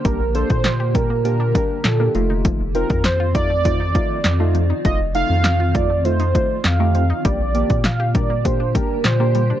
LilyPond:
<<
  \new Staff \with { instrumentName = "Soft synth lead" } { \time 4/4 \key bes \major \tempo 4 = 100 bes'8 c''4 bes'8 bes'4 a'8. r16 | r8 bes'8 c''8 d''2~ d''8 | ees''8 f''4 d''8 c''4 f''4 | d''4 f''8 d''8 c''8 bes'8 c''4 | }
  \new Staff \with { instrumentName = "Synth keys" } { \time 4/4 \key bes \major <bes d' g'>16 r16 <bes d' a'>8 r8 <bes d' g'>16 r16 <bes d' g'>16 r16 <bes d' g'>8 r16 <bes d' g'>16 <a ees' f'>8~ | <a ees' f'>16 r16 <c' ees' f'>8 r8 <a ees' f'>16 r16 <a ees' f'>16 r16 <a ees' f'>8 r16 <a ees' f'>8 r16 | <a ees' f'>16 r16 <a ees' f'>8 r8 <a ees' f'>16 r16 <a ees' f'>16 r16 <a ees' f'>8 r16 <a ees' g'>8 r16 | <bes d' g'>16 r16 <bes d' g'>8 r8 <bes d' bes'>16 r16 <bes d' g'>16 r16 <bes d' g'>8 r16 <bes d' g'>8 r16 | }
  \new Staff \with { instrumentName = "Ambient pad" } { \time 4/4 \key bes \major <d bes g'>2.~ <d bes g'>8 <ees c' f'>8~ | <ees c' f'>1~ | <ees c' f'>1 | <d bes g'>1 | }
  \new Staff \with { instrumentName = "Synth arpeggio sound" } { \time 4/4 \key bes \major g16 r4 g'16 g16 bes16 r16 d'16 g16 r8 bes16 f16 ees'16 | f16 r4 f'16 f16 a16 r16 ees'16 f16 r8 a16 f16 ees'16 | f16 r4 f'16 f16 a16 r16 ees'16 f16 r8 a16 f16 ees'16 | g16 r4 g'16 g16 bes16 r16 d'16 g16 r8 bes16 g16 d'16 | }
  \new Staff \with { instrumentName = "Analog synth bass" } { \clef bass \time 4/4 \key bes \major bes,,16 bes,,8 bes,2~ bes,16 bes,8 f,,8~ | f,,16 f,,8 f,2~ f,16 f,4 | f,,16 f,,8 f,2~ f,16 f,4 | bes,,16 bes,,8 bes,2~ bes,16 bes,4 | }
  \new DrumStaff \with { instrumentName = "Drums" } \drummode { \time 4/4 <hh bd>8 hh16 <hh bd>16 <hc hh sn>8 <hh bd>8 hh8 <hh bd>8 <hc hh sn>8 hh8 | <hh bd>8 hh16 <hh bd>16 <hc hh sn>8 <hh bd>8 <hh bd>8 <hh bd>8 <hc hh sn>8 hh8 | <hh bd>8 hh8 <hc hh sn>8 <hh bd>8 hh16 hh16 <hh bd>8 <hc hh sn>8 hh8 | <hh bd>8 hh16 <hh bd>16 <hc hh sn>8 <hh bd>8 <hh bd>8 <hh bd>8 <hc hh sn>8 hh8 | }
>>